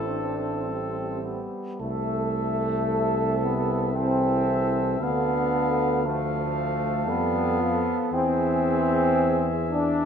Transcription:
0.00 1.46 A1 soft
0.00 1.42 A3 soft
0.00 1.47 C4 soft
0.00 1.18 A4 soft
0.07 0.64 D4 soft
0.64 1.76 G3 soft
0.64 1.21 C4 soft
1.23 1.80 B3 soft
1.79 4.96 C2 soft
1.79 3.41 A3 soft
1.79 3.89 A4 soft
1.79 3.90 E5 soft
2.89 3.94 C3 soft
3.42 3.94 B3 soft
3.92 4.99 E3 soft
3.92 4.99 C4 medium
3.92 4.97 A4 soft
3.92 4.97 E5 soft
4.99 7.10 D2 soft
4.99 6.05 D3 medium
4.99 6.02 B3 medium
4.99 6.02 A4 soft
4.99 6.04 F5 soft
6.03 7.09 F3 soft
6.03 7.07 A3 medium
6.03 8.14 A4 soft
6.03 7.94 F5 soft
7.07 7.95 F2 soft
7.07 7.62 G3 soft
7.07 8.12 B3 medium
7.60 8.12 F3 soft
8.11 10.05 E2 soft
8.11 9.89 E3 medium
8.11 9.52 C4 medium
8.11 9.93 G#4 soft
8.11 10.05 E5 soft
9.69 10.05 D4 medium

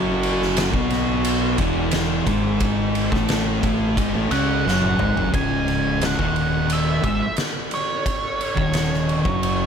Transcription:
0.00 0.70 F#1 medium
0.00 0.73 F#2 medium
0.00 0.73 F#3 loud
0.23 ride medium
0.42 snare soft
0.57 snare loud
0.57 ride loud
0.73 1.55 B1 loud
0.73 1.58 B2 medium
0.73 1.59 B3 loud
0.73 kick medium
0.90 snare soft
0.90 ride medium
1.25 ride medium
1.58 2.23 E1 medium
1.58 2.26 E2 medium
1.58 2.27 E3 loud
1.58 kick loud
1.58 ride medium
1.91 snare medium
1.91 ride loud
2.27 3.08 G#1 medium
2.27 3.11 G#2 loud
2.27 3.11 G#3 loud
2.27 kick loud
2.27 ride medium
2.60 kick loud
2.60 ride loud
2.95 ride medium
3.12 3.60 A1 medium
3.12 3.61 A2 medium
3.12 3.62 A3 loud
3.12 kick loud
3.12 snare soft
3.29 snare loud
3.29 ride medium
3.62 3.95 A1 medium
3.62 3.95 A2 medium
3.62 3.96 A3 medium
3.62 kick loud
3.62 ride medium
3.97 4.13 G#1 medium
3.97 4.13 G#2 medium
3.97 4.13 G#3 loud
3.97 kick loud
3.97 ride loud
4.14 4.30 A1 loud
4.14 4.30 A2 medium
4.14 4.31 A3 medium
4.31 4.62 C#2 loud
4.31 4.64 C#3 medium
4.31 4.65 C#4 medium
4.31 5.29 F#5 medium
4.31 ride medium
4.66 4.97 F#1 loud
4.66 4.99 F#2 loud
4.66 4.99 F#3 loud
4.66 snare medium
4.82 high tom medium
4.99 5.15 G#1 medium
4.99 5.15 G#2 medium
4.99 5.16 G#3 loud
4.99 mid tom medium
5.16 5.32 F#1 medium
5.16 5.33 F#2 medium
5.16 5.34 F#3 loud
5.16 floor tom medium
5.33 6.14 C#1 medium
5.33 6.18 C#2 medium
5.33 6.19 C#3 loud
5.33 6.04 G#5 loud
5.33 kick loud
5.33 ride medium
5.68 ride medium
6.01 snare loud
6.01 ride medium
6.06 6.73 F#5 loud
6.18 7.00 D#1 medium
6.18 7.02 D#2 medium
6.18 7.03 D#3 medium
6.18 kick medium
6.36 ride medium
6.70 7.35 E5 medium
6.70 ride loud
7.04 7.19 G#1 medium
7.04 7.20 G#2 medium
7.04 7.20 G#3 medium
7.04 kick loud
7.04 ride medium
7.37 snare loud
7.37 ride medium
7.71 9.66 C#5 medium
7.71 ride medium
8.06 kick loud
8.06 ride loud
8.41 ride medium
8.56 9.21 D#1 medium
8.56 9.24 D#2 medium
8.56 9.24 D#3 loud
8.56 kick loud
8.73 snare loud
8.73 ride loud
8.93 snare soft
9.09 ride medium
9.25 9.66 F#1 medium
9.25 9.66 F#2 medium
9.25 9.66 F#3 medium
9.25 kick loud
9.43 ride medium

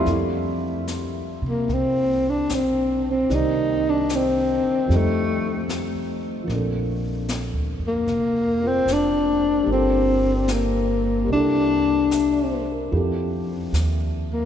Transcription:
0.01 3.27 F3 soft
0.01 3.28 G3 soft
0.06 1.39 F2 medium
0.06 3.30 A4 soft
0.06 brush sweep soft
0.06 snare soft
0.10 3.29 C4 soft
0.10 3.32 E4 soft
0.88 snare soft
0.88 hi-hat pedal soft
1.42 1.66 C3 medium
1.49 1.75 A#3 medium
1.68 2.45 C2 medium
1.68 brush sweep soft
1.68 snare soft
1.74 2.31 C4 medium
2.30 2.56 D4 medium
2.50 3.26 B1 medium
2.50 snare soft
2.50 hi-hat pedal soft
2.55 3.07 C4 medium
3.11 3.36 C4 medium
3.29 4.60 C2 medium
3.29 4.89 D#3 soft
3.29 4.87 G3 soft
3.29 4.89 A#3 soft
3.29 4.89 C4 soft
3.29 4.90 D5 soft
3.29 brush sweep soft
3.29 snare soft
3.35 3.91 D#4 medium
3.90 4.17 D4 medium
4.09 snare soft
4.09 hi-hat pedal medium
4.16 4.98 C4 medium
4.65 muted upright bass stroke soft
4.87 6.44 F2 medium
4.87 6.42 F3 soft
4.87 6.48 G3 soft
4.87 6.49 A3 soft
4.87 6.47 C4 soft
4.87 brush sweep soft
4.87 snare soft
4.93 5.73 A3 medium
4.93 6.50 D#4 soft
5.69 snare soft
5.69 hi-hat pedal soft
6.43 9.65 F3 soft
6.43 8.59 A#3 soft
6.47 7.49 A#1 medium
6.47 8.61 C4 soft
6.47 brush sweep soft
6.47 snare soft
6.52 9.67 D4 soft
6.52 9.70 A4 soft
7.29 snare soft
7.29 hi-hat pedal soft
7.53 7.78 D2 soft
7.79 8.04 F2 medium
7.87 8.69 A#3 medium
8.07 8.83 F1 medium
8.07 brush sweep soft
8.07 snare soft
8.60 9.64 A#3 soft
8.60 9.67 C4 soft
8.60 9.68 F4 soft
8.67 8.94 C4 medium
8.86 9.63 F1 medium
8.86 snare soft
8.86 hi-hat pedal soft
8.93 9.70 D4 medium
9.63 11.24 G1 medium
9.63 11.23 G3 soft
9.63 11.25 A#3 soft
9.67 11.28 D4 soft
9.67 brush sweep soft
9.71 10.54 C4 medium
9.71 11.31 F4 soft
9.71 11.32 A4 medium
10.48 snare soft
10.48 hi-hat pedal soft
10.52 11.31 A#3 medium
11.24 12.90 G3 soft
11.24 12.91 A#3 soft
11.28 12.88 C2 medium
11.28 12.92 D4 soft
11.28 brush sweep soft
11.32 12.64 D4 medium
11.32 12.91 E4 soft
11.32 12.91 A4 medium
12.11 12.50 E5 soft
12.11 snare soft
12.11 hi-hat pedal soft
12.32 12.67 D5 soft
12.51 12.76 C5 soft
12.72 13.00 A#4 soft
12.91 13.69 F2 medium
12.91 14.45 F3 soft
12.91 14.45 C4 soft
12.91 14.45 E4 soft
12.91 14.45 G4 soft
12.91 14.45 A4 soft
12.91 brush sweep soft
13.73 14.45 D#2 medium
13.73 snare soft
13.73 hi-hat pedal medium
14.33 14.45 A#3 medium

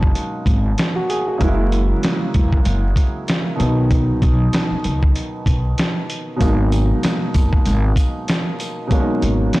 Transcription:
0.00 1.35 B2 medium
0.00 1.36 F#3 medium
0.00 1.37 G#3 medium
0.00 1.38 A#3 medium
0.00 1.43 C#4 medium
0.00 1.42 D#4 medium
0.00 kick loud
0.15 closed hi-hat medium
0.46 0.72 G#1 loud
0.46 kick medium
0.46 closed hi-hat medium
0.78 snare loud
0.78 closed hi-hat medium
0.96 1.09 F#4 medium
1.09 1.26 G#4 medium
1.09 closed hi-hat medium
1.28 1.57 F#4 medium
1.38 1.91 F#1 loud
1.38 3.54 C#3 medium
1.38 3.55 F#3 medium
1.38 3.56 G#3 medium
1.38 kick loud
1.38 closed hi-hat medium
1.43 3.56 A#3 medium
1.43 3.57 E4 medium
1.72 closed hi-hat medium
2.03 snare loud
2.03 closed hi-hat medium
2.34 2.60 E1 medium
2.34 kick loud
2.34 closed hi-hat medium
2.53 kick loud
2.65 2.91 F#1 loud
2.65 closed hi-hat medium
2.96 kick medium
2.96 closed hi-hat medium
3.28 snare loud
3.28 closed hi-hat medium
3.56 6.04 B2 medium
3.56 6.04 D#3 medium
3.56 6.05 F#3 medium
3.60 4.10 B1 loud
3.60 6.06 B3 medium
3.60 6.07 D#4 medium
3.60 closed hi-hat medium
3.91 kick loud
3.91 closed hi-hat medium
4.22 4.47 B1 loud
4.22 kick loud
4.22 closed hi-hat medium
4.53 snare loud
4.53 closed hi-hat loud
4.71 muted upright bass stroke soft
4.84 5.10 C#2 medium
4.84 closed hi-hat medium
5.03 kick loud
5.15 closed hi-hat medium
5.46 5.72 B1 medium
5.46 kick medium
5.46 closed hi-hat medium
5.78 snare loud
5.78 closed hi-hat medium
6.10 closed hi-hat medium
6.36 8.85 B2 medium
6.36 8.85 F#3 medium
6.36 8.86 G#3 medium
6.41 6.91 G#1 loud
6.41 8.87 A#3 medium
6.41 8.88 D#4 medium
6.41 kick loud
6.41 closed hi-hat medium
6.41 sleigh bells medium
6.72 closed hi-hat medium
6.72 sleigh bells medium
7.03 snare loud
7.03 closed hi-hat medium
7.03 sleigh bells medium
7.34 7.60 F#1 medium
7.34 kick loud
7.34 closed hi-hat medium
7.34 sleigh bells medium
7.53 kick loud
7.66 7.91 G#1 loud
7.66 closed hi-hat medium
7.66 sleigh bells medium
7.96 kick medium
7.96 closed hi-hat medium
7.96 sleigh bells medium
8.28 snare loud
8.28 closed hi-hat medium
8.28 sleigh bells soft
8.60 closed hi-hat medium
8.60 sleigh bells medium
8.87 9.60 B2 medium
8.87 9.60 F#3 medium
8.87 9.60 G#3 medium
8.87 kick loud
8.87 closed hi-hat medium
8.92 9.60 A#3 medium
8.92 8.99 C#4 medium
9.00 9.60 D#4 medium
9.22 9.48 G#1 loud
9.22 closed hi-hat medium
9.53 snare loud
9.53 closed hi-hat medium

